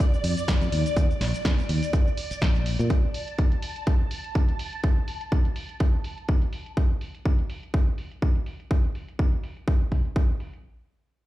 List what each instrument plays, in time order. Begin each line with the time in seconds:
Already playing: string machine D5
0.00 kick, closed hi-hat, shaker
0.13 muted fingered electric bass stroke, maracas, shaker
0.24 fingered electric bass F2, open hi-hat
0.37 closed hi-hat, maracas, shaker
0.48 kick, snare, closed hi-hat, shaker
0.61 fingered electric bass F2, closed hi-hat, maracas, shaker
0.72 fingered electric bass D#2, open hi-hat
0.86 closed hi-hat, maracas, shaker
0.96 fingered electric bass D#2, kick, closed hi-hat, maracas, shaker
1.10 muted fingered electric bass stroke, maracas, shaker
1.21 fingered electric bass A#1, snare, open hi-hat
1.34 closed hi-hat, maracas, shaker
1.44 kick, snare, closed hi-hat, maracas, shaker
1.59 closed hi-hat, maracas, shaker
1.69 fingered electric bass D#2, open hi-hat
1.82 closed hi-hat, maracas, shaker
1.93 kick, closed hi-hat, shaker, maracas
2.07 maracas, shaker
2.17 open hi-hat
2.31 muted fingered electric bass stroke, closed hi-hat, shaker, maracas
2.42 fingered electric bass A#1, kick, snare, closed hi-hat, shaker
2.55 closed hi-hat, shaker, maracas
2.66 open hi-hat
2.79 fingered electric bass A#2, closed hi-hat, maracas, shaker
2.90 string machine A5, kick, closed hi-hat
3.14 open hi-hat
3.28 closed hi-hat
3.38 kick, closed hi-hat
3.52 closed hi-hat
3.62 open hi-hat
3.76 closed hi-hat
3.87 kick, closed hi-hat
4.11 open hi-hat
4.24 closed hi-hat
4.35 kick, closed hi-hat
4.49 closed hi-hat
4.59 open hi-hat
4.73 closed hi-hat
4.83 kick, closed hi-hat
5.08 open hi-hat
5.21 closed hi-hat
5.32 kick, closed hi-hat
5.45 closed hi-hat
5.56 open hi-hat
5.69 closed hi-hat
5.80 kick, closed hi-hat
6.04 open hi-hat
6.18 closed hi-hat
6.28 kick, closed hi-hat
6.42 closed hi-hat
6.53 open hi-hat
6.66 closed hi-hat
6.77 kick, closed hi-hat
7.01 open hi-hat
7.15 closed hi-hat
7.25 kick, closed hi-hat
7.39 closed hi-hat
7.50 open hi-hat
7.63 closed hi-hat
7.74 kick, closed hi-hat
7.98 open hi-hat
8.11 closed hi-hat
8.22 kick, closed hi-hat
8.36 closed hi-hat
8.46 open hi-hat
8.60 closed hi-hat
8.71 kick, closed hi-hat
8.84 closed hi-hat
8.95 open hi-hat
9.08 closed hi-hat
9.19 kick, closed hi-hat
9.33 closed hi-hat
9.43 open hi-hat
9.57 closed hi-hat
9.68 kick, closed hi-hat
9.81 closed hi-hat
9.92 kick, open hi-hat
10.05 closed hi-hat
10.16 kick, closed hi-hat
10.29 closed hi-hat
10.40 open hi-hat
10.53 closed hi-hat